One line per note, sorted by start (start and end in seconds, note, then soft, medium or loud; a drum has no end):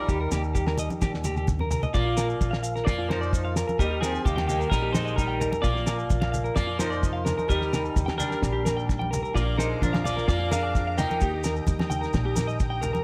0.00 1.42 G3 medium
0.00 1.43 D#4 medium
0.00 1.41 A#4 medium
0.09 0.27 D#2 medium
0.09 1.46 D#3 medium
0.09 0.19 G4 medium
0.09 0.76 G4 medium
0.09 kick medium
0.09 maracas medium
0.21 0.30 A#4 medium
0.31 0.87 D#2 medium
0.31 3.79 A#3 medium
0.31 0.42 G4 medium
0.31 snare medium
0.31 low conga medium
0.31 low agogo medium
0.31 maracas medium
0.44 maracas soft
0.53 1.90 G3 medium
0.53 0.64 G4 medium
0.53 kick medium
0.53 maracas medium
0.66 0.77 A#4 medium
0.66 snare medium
0.66 low agogo medium
0.77 1.94 G4 medium
0.77 0.89 D#5 medium
0.77 low conga medium
0.77 maracas medium
0.90 high conga medium
0.90 maracas soft
1.01 1.76 D#2 medium
1.01 1.91 A#2 medium
1.01 1.11 G4 medium
1.01 kick medium
1.01 snare soft
1.01 high conga medium
1.01 low agogo medium
1.01 maracas medium
1.14 snare soft
1.24 1.91 D#4 medium
1.24 1.34 G4 medium
1.24 high tom medium
1.24 high conga medium
1.24 low agogo medium
1.24 maracas medium
1.36 1.46 G4 medium
1.36 high tom soft
1.36 maracas soft
1.46 1.70 D3 medium
1.46 kick medium
1.46 mid tom medium
1.46 low conga medium
1.46 maracas medium
1.59 1.69 A#4 medium
1.59 mid tom medium
1.59 high conga soft
1.70 1.94 C3 medium
1.70 1.81 A#4 medium
1.70 floor tom medium
1.70 low conga medium
1.70 low agogo medium
1.70 maracas medium
1.83 1.92 D#5 medium
1.83 floor tom medium
1.83 low conga medium
1.83 maracas soft
1.93 2.31 A#1 medium
1.93 2.84 A#2 medium
1.93 2.60 A#3 medium
1.93 2.04 F4 medium
1.93 2.60 F4 medium
1.93 2.39 F4 medium
1.93 2.17 A#4 medium
1.93 2.59 D5 medium
1.93 kick medium
1.93 maracas medium
2.06 2.15 F4 medium
2.17 2.27 A#4 medium
2.17 3.10 A#4 medium
2.17 snare medium
2.17 low agogo medium
2.17 maracas medium
2.30 maracas soft
2.39 2.78 A#1 medium
2.39 3.30 F3 medium
2.39 3.31 F4 medium
2.39 kick medium
2.39 high conga medium
2.39 low conga medium
2.39 maracas medium
2.51 2.61 F5 medium
2.51 snare medium
2.51 low agogo medium
2.63 2.73 F5 medium
2.63 maracas medium
2.76 2.85 A#4 medium
2.76 snare soft
2.76 maracas soft
2.85 3.61 F2 medium
2.85 3.76 A#2 medium
2.85 3.08 A#3 medium
2.85 3.08 F4 medium
2.85 3.07 D5 loud
2.85 kick loud
2.85 snare medium
2.85 low agogo medium
2.85 maracas medium
2.99 3.08 F4 medium
3.09 3.54 F3 medium
3.09 3.53 D#4 medium
3.09 3.19 A#4 medium
3.09 3.53 C5 medium
3.09 snare medium
3.09 high conga medium
3.09 low agogo medium
3.21 3.31 D5 medium
3.21 maracas soft
3.31 3.78 F3 medium
3.31 3.76 F4 medium
3.31 kick medium
3.31 maracas medium
3.45 3.54 F5 medium
3.56 3.66 A#4 medium
3.56 snare medium
3.56 low agogo medium
3.56 maracas medium
3.68 3.77 A#4 medium
3.68 high conga medium
3.68 maracas soft
3.79 4.16 D#2 medium
3.79 5.62 D#3 medium
3.79 4.02 G3 medium
3.79 7.04 A#3 medium
3.79 4.01 D#4 medium
3.79 4.23 D#4 medium
3.79 3.89 G4 medium
3.79 4.03 G4 medium
3.79 4.00 A#4 medium
3.79 kick medium
3.79 maracas medium
3.91 4.00 G4 medium
4.01 4.25 F3 medium
4.01 4.23 C4 medium
4.01 4.25 G#4 medium
4.01 4.12 A#4 medium
4.01 snare medium
4.01 low agogo medium
4.01 maracas medium
4.15 maracas soft
4.24 4.63 D#2 medium
4.24 4.48 D#3 medium
4.24 5.16 G3 medium
4.24 4.48 A#3 medium
4.24 5.17 D#4 medium
4.24 4.47 G4 medium
4.24 kick medium
4.24 high conga medium
4.24 low conga medium
4.24 maracas medium
4.36 4.46 G5 medium
4.36 snare medium
4.36 high conga medium
4.36 low agogo medium
4.47 4.71 D#3 medium
4.47 4.70 A#3 medium
4.47 4.69 G4 medium
4.47 4.58 G5 medium
4.47 low conga medium
4.47 maracas medium
4.59 4.69 A#4 medium
4.59 maracas soft
4.70 5.46 A#1 loud
4.70 5.61 A#2 medium
4.70 4.94 G3 medium
4.70 4.93 D#4 medium
4.70 4.92 A#4 medium
4.70 kick medium
4.70 snare medium
4.70 low agogo medium
4.70 maracas medium
4.82 4.92 G4 medium
4.93 5.17 G#3 medium
4.93 5.16 D#4 medium
4.93 5.64 G4 medium
4.93 5.15 C5 medium
4.93 snare medium
4.93 high conga medium
4.93 low agogo medium
4.93 maracas loud
5.05 5.15 D#5 medium
5.05 maracas soft
5.16 5.61 G3 medium
5.16 5.50 G3 medium
5.16 5.62 D#4 medium
5.16 5.51 D#4 medium
5.16 5.50 A#4 medium
5.16 kick medium
5.16 maracas medium
5.28 5.38 G5 medium
5.40 5.50 A#4 medium
5.40 low conga medium
5.40 low agogo medium
5.40 maracas medium
5.52 5.62 A#4 medium
5.52 high conga medium
5.52 maracas soft
5.62 6.01 A#1 loud
5.62 6.54 A#2 medium
5.62 6.52 A#3 medium
5.62 5.73 F4 medium
5.62 6.08 F4 medium
5.62 6.53 F4 medium
5.62 6.55 D5 loud
5.62 muted steel-string acoustic guitar stroke medium
5.62 kick medium
5.62 maracas medium
5.75 5.85 F4 medium
5.75 snare soft
5.86 5.97 A#4 medium
5.86 6.79 A#4 medium
5.86 snare medium
5.86 low agogo medium
5.86 maracas medium
5.99 maracas soft
6.09 6.48 A#1 medium
6.09 7.49 F3 medium
6.09 7.47 F4 medium
6.09 kick medium
6.09 high conga medium
6.09 low conga medium
6.09 maracas medium
6.21 6.31 F5 medium
6.21 snare medium
6.21 high conga medium
6.21 low agogo medium
6.32 6.43 F5 medium
6.32 low conga medium
6.32 maracas medium
6.44 6.54 A#4 medium
6.44 maracas soft
6.55 7.32 F2 medium
6.55 7.46 A#2 medium
6.55 6.78 A#3 medium
6.55 6.79 F4 medium
6.55 6.78 D5 loud
6.55 kick medium
6.55 snare medium
6.55 low agogo medium
6.55 maracas medium
6.67 6.77 F4 medium
6.79 7.45 F3 medium
6.79 7.46 D#4 medium
6.79 6.89 A#4 medium
6.79 7.51 A#4 medium
6.79 7.48 C5 medium
6.79 snare medium
6.79 high conga medium
6.79 low agogo medium
6.79 maracas medium
6.90 7.01 D5 medium
6.90 maracas soft
7.01 7.25 C3 medium
7.01 kick medium
7.01 maracas medium
7.13 7.23 F5 medium
7.25 7.49 D3 medium
7.25 7.36 A#4 medium
7.25 snare medium
7.25 low conga medium
7.25 low agogo medium
7.25 maracas medium
7.38 7.47 A#4 medium
7.38 high conga medium
7.38 maracas soft
7.48 7.87 D#2 medium
7.48 9.32 D#3 medium
7.48 8.15 G3 medium
7.48 8.16 D#4 medium
7.48 7.97 D#4 medium
7.48 7.59 G4 medium
7.48 8.17 A#4 medium
7.48 muted steel-string acoustic guitar stroke medium
7.48 kick medium
7.48 maracas medium
7.61 7.71 G4 medium
7.61 snare soft
7.73 8.64 G4 medium
7.73 7.83 A#4 medium
7.73 snare medium
7.73 low conga medium
7.73 low agogo medium
7.73 maracas medium
7.85 maracas soft
7.96 8.33 D#2 medium
7.96 8.85 G3 medium
7.96 kick medium
7.96 low conga medium
7.96 maracas medium
8.06 8.16 G5 medium
8.06 snare medium
8.06 high conga medium
8.06 low agogo medium
8.18 9.08 G3 medium
8.18 9.08 D4 medium
8.18 9.07 A#4 medium
8.18 8.29 G5 medium
8.18 low conga medium
8.18 maracas medium
8.29 8.40 A#4 medium
8.29 snare soft
8.29 maracas soft
8.42 9.17 A#1 medium
8.42 9.32 A#2 medium
8.42 kick medium
8.42 snare medium
8.42 low agogo medium
8.42 maracas medium
8.53 8.63 G4 medium
8.65 9.35 G4 medium
8.65 8.75 A#4 medium
8.65 snare medium
8.65 high conga medium
8.65 low agogo medium
8.65 maracas medium
8.77 8.87 G5 medium
8.77 maracas soft
8.86 9.31 G3 medium
8.86 9.32 D#4 medium
8.86 kick medium
8.86 snare soft
8.86 maracas medium
8.99 9.09 G5 medium
8.99 high conga medium
9.11 9.21 A#4 medium
9.11 low conga medium
9.11 low agogo medium
9.11 maracas medium
9.23 9.33 A#4 medium
9.23 maracas soft
9.33 9.73 A#1 loud
9.33 10.25 A#2 medium
9.33 9.57 A#3 medium
9.33 11.18 D4 medium
9.33 9.57 F4 medium
9.33 9.44 F4 medium
9.33 9.80 F4 medium
9.33 9.58 A#4 medium
9.33 9.58 D5 medium
9.33 11.19 F5 medium
9.33 13.04 A#5 medium
9.33 11.19 D6 medium
9.33 kick medium
9.33 maracas medium
9.45 9.56 F4 medium
9.57 9.81 G#3 medium
9.57 9.80 D#4 medium
9.57 9.68 A#4 medium
9.57 11.22 A#4 medium
9.57 9.80 C5 medium
9.57 snare medium
9.57 low agogo medium
9.57 maracas medium
9.81 10.19 A#1 medium
9.81 10.73 F3 medium
9.81 10.04 F3 medium
9.81 10.04 D4 medium
9.81 10.74 F4 medium
9.81 10.05 A#4 medium
9.81 kick medium
9.81 high conga medium
9.81 low conga medium
9.81 maracas medium
9.93 10.03 F5 medium
9.93 snare medium
9.93 high conga medium
9.93 low agogo medium
10.04 10.28 A#3 medium
10.04 10.26 F4 medium
10.04 10.27 D5 medium
10.04 10.14 F5 medium
10.04 low conga medium
10.04 maracas medium
10.16 10.26 A#4 medium
10.16 snare soft
10.16 maracas soft
10.26 11.03 F2 loud
10.26 11.17 A#2 medium
10.26 10.51 A#3 medium
10.26 10.49 F4 medium
10.26 10.52 D5 medium
10.26 kick medium
10.26 snare medium
10.26 low agogo medium
10.26 maracas medium
10.39 10.49 F4 medium
10.51 10.96 D4 medium
10.51 10.95 G#4 medium
10.51 10.61 A#4 medium
10.51 10.95 F5 medium
10.51 snare medium
10.51 high conga medium
10.51 low agogo medium
10.51 maracas medium
10.63 10.72 D5 medium
10.74 11.21 F3 medium
10.74 11.19 F4 medium
10.74 kick loud
10.74 snare soft
10.74 maracas medium
10.87 10.96 F5 medium
10.97 11.42 D#4 medium
10.97 11.41 A#4 medium
10.97 11.08 A#4 medium
10.97 11.41 G5 medium
10.97 snare medium
10.97 low conga medium
10.97 low agogo medium
10.97 maracas medium
11.10 11.19 A#4 medium
11.10 high conga medium
11.10 maracas soft
11.20 11.59 D#2 loud
11.20 12.60 D#3 medium
11.20 13.04 A#3 medium
11.20 11.66 D#4 medium
11.20 11.31 G4 medium
11.20 11.43 G4 medium
11.20 13.04 G5 medium
11.20 13.04 D#6 medium
11.20 kick medium
11.20 maracas medium
11.34 11.43 G4 medium
11.44 12.37 G4 medium
11.44 11.54 A#4 medium
11.44 snare medium
11.44 low agogo medium
11.44 maracas medium
11.56 maracas soft
11.67 12.05 D#2 medium
11.67 13.04 G3 medium
11.67 13.04 D#4 medium
11.67 kick medium
11.67 high conga medium
11.67 low conga medium
11.67 maracas medium
11.79 snare medium
11.79 high conga medium
11.79 low agogo medium
11.90 12.00 G5 medium
11.90 low conga medium
11.90 maracas medium
12.01 12.11 A#4 medium
12.01 snare soft
12.01 maracas soft
12.13 12.89 A#1 medium
12.13 13.03 A#2 medium
12.13 kick medium
12.13 snare medium
12.13 low agogo medium
12.13 maracas medium
12.25 12.35 G4 medium
12.35 13.04 G4 medium
12.35 12.46 A#4 medium
12.35 snare medium
12.35 high conga medium
12.35 low agogo medium
12.35 maracas loud
12.47 12.57 D#5 medium
12.47 maracas soft
12.60 12.83 D3 medium
12.60 kick loud
12.60 maracas medium
12.70 12.80 G5 medium
12.81 13.04 C3 medium
12.81 12.92 A#4 medium
12.81 low conga medium
12.81 low agogo medium
12.81 maracas medium
12.93 13.04 A#4 medium
12.93 high conga medium
12.93 maracas soft